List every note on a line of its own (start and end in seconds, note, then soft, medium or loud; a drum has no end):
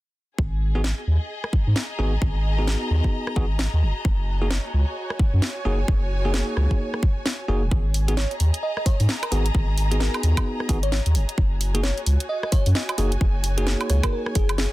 0.38 0.93 G#1 loud
0.38 5.39 G#4 medium
0.38 kick loud
0.75 0.81 B3 medium
0.75 0.81 D#4 medium
0.75 0.81 F#4 medium
0.75 0.81 G#4 medium
0.75 5.39 D#5 medium
0.84 snare loud
1.07 1.18 D#2 medium
1.44 cross-stick medium
1.53 5.39 A#5 medium
1.53 kick loud
1.67 1.74 G#2 medium
1.76 snare loud
1.99 2.17 G#1 medium
1.99 2.12 B3 medium
1.99 2.12 D#4 medium
1.99 2.12 F#4 medium
1.99 2.12 G#4 loud
2.22 2.76 G#1 loud
2.22 kick loud
2.58 3.34 B3 medium
2.58 3.34 D#4 medium
2.58 3.34 F#4 medium
2.58 3.34 G#4 medium
2.68 snare loud
2.90 3.01 D#2 medium
3.04 kick medium
3.27 cross-stick medium
3.36 3.68 G#1 medium
3.36 3.44 B3 medium
3.36 3.44 D#4 medium
3.36 3.44 F#4 medium
3.36 3.44 G#4 loud
3.36 kick loud
3.59 snare loud
3.73 3.84 D#2 medium
3.82 3.93 F#1 medium
3.82 8.34 F#4 medium
4.05 4.59 F#1 loud
4.05 kick loud
4.39 4.47 A#3 medium
4.39 4.47 D#4 medium
4.39 4.47 F#4 medium
4.39 4.47 G#4 medium
4.39 8.30 C#5 medium
4.51 snare loud
4.66 8.35 G#5 medium
4.74 4.84 C#2 medium
5.10 cross-stick medium
5.19 kick loud
5.33 5.40 F#2 loud
5.42 snare loud
5.65 5.84 F#1 medium
5.65 5.78 A#3 medium
5.65 5.78 D#4 medium
5.65 5.78 F#4 medium
5.65 5.78 G#4 loud
5.88 6.42 F#1 loud
5.88 kick loud
6.25 7.00 A#3 medium
6.25 7.01 D#4 medium
6.25 7.00 F#4 medium
6.25 7.00 G#4 medium
6.34 snare loud
6.57 6.67 C#2 medium
6.57 cross-stick medium
6.71 kick medium
6.94 cross-stick medium
7.03 kick loud
7.26 snare loud
7.48 7.64 F#1 loud
7.48 7.62 A#3 medium
7.48 7.62 D#4 medium
7.48 7.62 F#4 medium
7.48 7.62 G#4 loud
7.62 7.69 D#1 loud
7.71 8.26 G#1 loud
7.71 12.69 G#4 medium
7.71 kick loud
7.94 open hi-hat loud
8.08 8.14 B3 medium
8.08 8.13 D#4 medium
8.08 8.13 F#4 medium
8.08 8.14 G#4 medium
8.08 closed hi-hat medium
8.13 11.91 D#5 medium
8.17 8.34 C#5 medium
8.17 snare loud
8.24 12.01 A#5 medium
8.31 closed hi-hat soft
8.40 8.51 D#2 medium
8.40 open hi-hat loud
8.54 closed hi-hat medium
8.63 8.72 D#5 medium
8.77 8.83 D#5 medium
8.77 cross-stick medium
8.86 9.03 C#5 medium
8.86 kick loud
8.86 open hi-hat loud
9.00 9.07 G#2 loud
9.00 open hi-hat medium
9.09 snare loud
9.23 9.28 A#4 medium
9.23 closed hi-hat medium
9.23 high woodblock medium
9.31 9.50 G#1 medium
9.31 9.45 B3 loud
9.31 9.45 D#4 medium
9.31 9.45 F#4 medium
9.31 9.45 G#4 loud
9.31 9.41 A#4 medium
9.31 open hi-hat loud
9.46 closed hi-hat medium
9.55 10.09 G#1 loud
9.55 kick loud
9.78 open hi-hat loud
9.91 10.67 B3 medium
9.91 10.67 D#4 medium
9.91 10.67 F#4 medium
9.91 10.67 G#4 medium
9.91 closed hi-hat medium
10.00 10.17 A#4 medium
10.00 snare loud
10.14 closed hi-hat soft
10.14 high woodblock medium
10.23 10.34 D#2 medium
10.23 open hi-hat loud
10.37 kick medium
10.37 closed hi-hat medium
10.37 high woodblock medium
10.60 cross-stick medium
10.69 11.00 G#1 loud
10.69 10.77 B3 medium
10.69 10.77 D#4 medium
10.69 10.77 F#4 medium
10.69 10.77 G#4 loud
10.69 kick loud
10.69 open hi-hat loud
10.83 10.89 C#5 medium
10.83 closed hi-hat medium
10.92 snare loud
11.06 11.16 D#2 medium
11.06 closed hi-hat medium
11.15 11.25 F#1 medium
11.15 14.73 F#4 medium
11.15 open hi-hat loud
11.29 closed hi-hat medium
11.38 11.92 F#1 loud
11.38 kick loud
11.45 14.73 G#5 medium
11.61 open hi-hat loud
11.74 11.80 A#3 medium
11.74 11.80 D#4 medium
11.74 11.80 F#4 medium
11.74 11.80 G#4 medium
11.74 closed hi-hat medium
11.82 14.73 C#5 medium
11.82 12.00 C#5 medium
11.82 snare loud
11.98 closed hi-hat soft
12.06 12.17 C#2 medium
12.06 open hi-hat loud
12.20 closed hi-hat medium
12.29 12.38 D#5 medium
12.43 12.49 D#5 medium
12.43 cross-stick medium
12.52 12.69 C#5 medium
12.52 kick loud
12.52 open hi-hat loud
12.66 12.73 F#2 loud
12.66 open hi-hat medium
12.75 12.84 D#5 medium
12.75 snare loud
12.89 12.95 D#5 medium
12.89 closed hi-hat medium
12.89 high woodblock medium
12.98 13.17 F#1 medium
12.98 13.11 A#3 medium
12.98 13.11 D#4 medium
12.98 13.11 F#4 medium
12.98 13.11 G#4 loud
12.98 open hi-hat loud
13.12 closed hi-hat medium
13.21 13.75 F#1 loud
13.21 kick loud
13.44 open hi-hat loud
13.58 14.33 A#3 medium
13.58 14.33 D#4 medium
13.58 14.33 F#4 medium
13.58 14.33 G#4 medium
13.58 closed hi-hat medium
13.67 snare loud
13.81 closed hi-hat soft
13.81 high woodblock medium
13.90 14.00 C#2 medium
13.90 14.01 C#5 medium
13.90 cross-stick medium
13.90 open hi-hat loud
14.03 14.09 A#4 medium
14.03 kick medium
14.03 closed hi-hat medium
14.03 high woodblock medium
14.13 14.22 A#4 medium
14.26 cross-stick medium
14.35 14.67 F#1 loud
14.35 14.52 G#4 medium
14.35 kick loud
14.35 open hi-hat loud
14.49 closed hi-hat medium
14.49 high woodblock medium
14.58 14.67 G#4 medium
14.58 snare loud